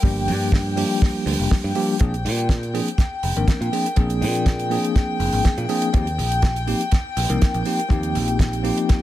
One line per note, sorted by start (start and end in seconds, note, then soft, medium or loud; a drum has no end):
0.00 0.29 G1 medium
0.00 0.74 F3 medium
0.00 0.74 G3 medium
0.00 0.74 A#3 medium
0.00 0.75 D4 medium
0.00 1.99 G5 medium
0.00 kick loud
0.04 0.75 G4 loud
0.28 0.82 G2 medium
0.28 open hi-hat loud
0.52 kick loud
0.52 snare loud
0.76 1.72 F3 medium
0.76 1.72 G3 medium
0.76 1.73 A#3 medium
0.76 1.73 D4 medium
0.76 1.73 G4 loud
0.76 open hi-hat loud
1.02 kick loud
1.02 snare medium
1.26 1.34 D2 medium
1.26 open hi-hat loud
1.39 1.47 F1 medium
1.39 open hi-hat medium
1.51 kick loud
1.51 snare loud
1.64 1.71 G2 medium
1.75 1.95 F3 medium
1.75 1.95 G3 medium
1.75 1.95 A#3 medium
1.75 1.95 D4 medium
1.75 1.95 G4 loud
1.75 open hi-hat loud
1.99 2.27 A#1 medium
1.99 2.13 F3 medium
1.99 2.13 A#3 medium
1.99 2.13 C4 medium
1.99 2.13 D4 medium
1.99 2.13 G#4 loud
1.99 9.02 G5 medium
1.99 kick loud
1.99 closed hi-hat medium
2.14 closed hi-hat soft
2.25 2.79 A#2 medium
2.25 open hi-hat loud
2.38 closed hi-hat medium
2.49 kick loud
2.49 snare loud
2.49 closed hi-hat medium
2.63 closed hi-hat soft
2.74 2.87 F3 medium
2.74 2.87 A#3 medium
2.74 2.87 C4 medium
2.74 2.87 D4 medium
2.74 2.87 G#4 loud
2.74 open hi-hat medium
2.88 closed hi-hat medium
2.98 kick loud
2.98 snare medium
2.98 closed hi-hat medium
3.23 3.31 F1 medium
3.23 open hi-hat loud
3.36 3.44 G#1 medium
3.36 3.70 F3 medium
3.36 3.70 A#3 medium
3.36 3.70 C4 medium
3.36 3.70 D4 medium
3.36 3.70 A#4 medium
3.36 closed hi-hat medium
3.48 kick loud
3.48 snare loud
3.48 closed hi-hat medium
3.61 3.68 A#2 medium
3.61 closed hi-hat soft
3.72 3.85 F3 medium
3.72 3.85 A#3 medium
3.72 3.85 C4 medium
3.72 3.85 D4 medium
3.72 3.86 G#4 medium
3.72 open hi-hat loud
3.86 closed hi-hat medium
3.96 4.23 A#1 medium
3.96 4.68 F3 medium
3.96 4.68 A#3 medium
3.96 4.68 C4 medium
3.96 4.68 D4 medium
3.96 4.68 G#4 loud
3.96 kick loud
3.96 closed hi-hat medium
4.10 closed hi-hat medium
4.21 4.76 A#2 medium
4.21 open hi-hat loud
4.35 closed hi-hat medium
4.46 kick loud
4.46 snare loud
4.46 closed hi-hat medium
4.59 closed hi-hat medium
4.70 5.66 F3 medium
4.70 5.66 A#3 medium
4.70 5.66 C4 medium
4.70 5.67 D4 medium
4.70 5.67 G#4 loud
4.70 open hi-hat medium
4.84 closed hi-hat medium
4.96 kick loud
4.96 snare medium
4.96 closed hi-hat medium
5.20 5.28 F1 medium
5.20 open hi-hat loud
5.32 5.40 G#1 loud
5.32 open hi-hat medium
5.45 kick loud
5.45 snare loud
5.45 closed hi-hat medium
5.58 5.65 A#2 medium
5.58 closed hi-hat soft
5.69 5.89 F3 medium
5.69 5.89 A#3 medium
5.69 5.89 C4 medium
5.69 5.89 D4 medium
5.69 5.89 G#4 loud
5.69 open hi-hat loud
5.82 closed hi-hat medium
5.93 6.20 D#2 medium
5.93 6.06 F3 medium
5.93 6.06 A#3 medium
5.93 6.06 C4 medium
5.93 6.07 D#4 medium
5.93 6.07 G4 loud
5.93 kick loud
5.93 closed hi-hat medium
6.07 closed hi-hat medium
6.18 6.73 A#1 medium
6.18 open hi-hat medium
6.32 closed hi-hat medium
6.42 kick loud
6.42 snare loud
6.42 closed hi-hat medium
6.56 closed hi-hat medium
6.67 6.80 F3 medium
6.67 6.80 A#3 medium
6.67 6.80 C4 medium
6.67 6.80 D#4 medium
6.67 6.81 G4 loud
6.67 open hi-hat medium
6.81 closed hi-hat medium
6.91 kick loud
6.91 snare medium
6.91 closed hi-hat medium
7.17 7.25 A#1 medium
7.17 open hi-hat loud
7.29 7.37 C2 loud
7.29 7.63 F3 medium
7.29 7.63 A#3 medium
7.29 7.63 C4 medium
7.29 7.63 D#4 medium
7.29 7.63 A#4 medium
7.29 closed hi-hat medium
7.42 kick loud
7.42 snare loud
7.42 closed hi-hat medium
7.54 7.62 A#1 medium
7.54 closed hi-hat soft
7.65 7.78 F3 medium
7.65 7.79 A#3 medium
7.65 7.79 C4 medium
7.65 7.79 D#4 medium
7.65 7.79 G4 medium
7.65 open hi-hat medium
7.79 closed hi-hat medium
7.89 8.17 D#2 medium
7.89 8.61 F3 medium
7.89 8.61 A#3 medium
7.89 8.61 C4 medium
7.89 8.61 D#4 medium
7.89 8.62 G4 loud
7.89 kick loud
7.89 closed hi-hat medium
8.03 closed hi-hat soft
8.15 8.70 A#1 medium
8.15 open hi-hat loud
8.28 closed hi-hat medium
8.39 kick medium
8.39 snare loud
8.39 closed hi-hat medium
8.53 closed hi-hat soft
8.63 9.02 F3 medium
8.63 9.02 A#3 medium
8.63 9.02 C4 medium
8.63 9.02 D#4 medium
8.63 9.02 G4 loud
8.63 open hi-hat medium
8.77 closed hi-hat medium
8.89 kick loud
8.89 snare medium
8.89 closed hi-hat medium